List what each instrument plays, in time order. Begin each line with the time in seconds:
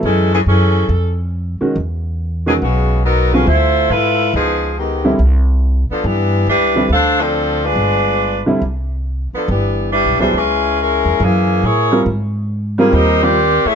0.03 upright bass F#2, saxophone section E3 G#3 C#4 A4
0.34 saxophone section E3 A3 C#4 G#4
0.46 upright bass F#2, saxophone section E3 C#4 G#4 A4
0.89 upright bass F2
1.61 upright piano D#3 G#3 C#4 F#4, muted upright bass stroke
1.76 upright bass E2
2.46 upright piano D#3 G#3 C#4 F#4, saxophone section F#3 B3 C#4 G#4
2.62 upright bass B1, saxophone section C#3 G#3 B3 F#4
3.05 saxophone section F#3 B3 D#4 A#4
3.33 upright piano D3 G3 C4 F4, saxophone section G#3 C#4 F#4 B4
3.47 upright bass D2, saxophone section A3 E4 F4 C5
3.90 upright bass G#2, saxophone section E4 F4 A4 B4
4.34 upright bass C#2, saxophone section F3 B3 D#4 G#4
4.78 saxophone section D#3 G#3 B3 G4
5.04 upright piano D3 G3 C4 E4
5.19 upright bass C2
5.90 saxophone section F3 B3 D4 A4, muted upright bass stroke
6.04 upright bass G2, saxophone section E3 B3 D4 G4
6.47 upright bass C#2, saxophone section G3 D4 E4 B4
6.75 upright piano D3 G3 C4 E4
6.89 upright bass D2, saxophone section D4 A4 C5 F5
7.20 saxophone section F3 C4 D4 A4
7.64 saxophone section G#3 D4 F4 B4
7.76 upright bass G1
8.46 upright piano D3 G3 C4 E4, muted upright bass stroke
8.62 upright bass C2
9.33 saxophone section F3 B3 D4 A4, muted upright bass stroke
9.48 upright bass G1, saxophone section E3 B3 D4 G4
9.92 saxophone section G3 D4 E4 B4
10.05 upright bass B1
10.19 upright bass C2, upright piano F#3 B3 E4 G#4, saxophone section G3 D4 E4 C5
10.34 upright bass C#2, saxophone section G#3 C#4 E4 B4
10.80 saxophone section G#3 C#4 E4 A#4
11.05 upright bass E2
11.20 upright bass F#2, saxophone section E3 A#3 C#4 G#4
11.63 upright bass A2, saxophone section E4 G#4 A#4 C#5
11.92 upright piano G3 C4 F4 A#4
12.06 upright bass G#2
12.78 saxophone section D#3 A#3 C4 G#4, upright piano G3 C4 F4 A#4
12.93 upright bass D#2, saxophone section A#3 D#4 G4 C5
13.22 upright piano G3 C4 F4 G4, saxophone section C4 G4 A#4 D5
13.65 saxophone section A3 E4 G#4 C#5, muted upright bass stroke